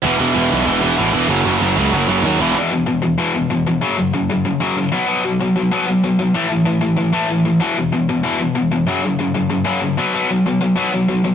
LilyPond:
<<
  \new Staff \with { instrumentName = "Distorted electric guitar" } { \clef bass \time 4/4 \key fis \dorian \tempo 4 = 190 <e, b, e>8 <e, b, e>8 <e, b, e>8 <e, b, e>8 <e, b, e>8 <e, b, e>8 <e, b, e>8 <e, b, e>8 | <fis, cis fis>8 <fis, cis fis>8 <fis, cis fis>8 <fis, cis fis>8 <fis, cis fis>8 <fis, cis fis>8 <fis, cis fis>8 <e, b, e>8 | <e, b, e>8 <e, b,>8 <e, b,>8 <e, b,>8 <e, b, e>8 <e, b,>8 <e, b,>8 <e, b,>8 | <fis, cis fis>8 <fis, cis>8 <fis, cis>8 <fis, cis>8 <fis, cis>8 <fis, cis fis>8 <fis, cis>8 <b, fis b>8 |
<b, fis b>8 <b, fis>8 <b, fis>8 <b, fis>8 <b, fis b>8 <b, fis>8 <b, fis>8 <b, fis>8 | <a, e a>8 <a, e>8 <a, e>8 <a, e>8 <a, e>8 <a, e a>8 <a, e>8 <a, e>8 | <e, b, e>8 <e, b,>8 <e, b,>8 <e, b,>8 <e, b, e>8 <e, b,>8 <e, b,>8 <e, b,>8 | <fis, cis fis>8 <fis, cis>8 <fis, cis>8 <fis, cis>8 <fis, cis>8 <fis, cis fis>8 <fis, cis>8 <b, fis b>8 |
<b, fis b>8 <b, fis>8 <b, fis>8 <b, fis>8 <b, fis b>8 <b, fis>8 <b, fis>8 <b, fis>8 | }
  \new Staff \with { instrumentName = "Distorted electric guitar" } { \clef bass \time 4/4 \key fis \dorian <e, b, e>8 <e, b, e>8 <e, b, e>8 <e, b, e>8 <e, b, e>8 <e, b, e>8 <e, b, e>8 <e, b, e>8 | <fis, cis fis>8 <fis, cis fis>8 <fis, cis fis>8 <fis, cis fis>8 <fis, cis fis>8 <fis, cis fis>8 <fis, cis fis>8 <e, b, e>8 | r1 | r1 |
r1 | r1 | r1 | r1 |
r1 | }
  \new Staff \with { instrumentName = "Picked electric bass" } { \clef bass \time 4/4 \key fis \dorian e,,8 e,,8 e,,8 b,,8 e,,8 e,,8 a,,8 e,,8 | fis,,8 fis,,8 fis,,8 cis,8 fis,,8 fis,,8 dis,8 e,,8 | r1 | r1 |
r1 | r1 | r1 | r1 |
r1 | }
>>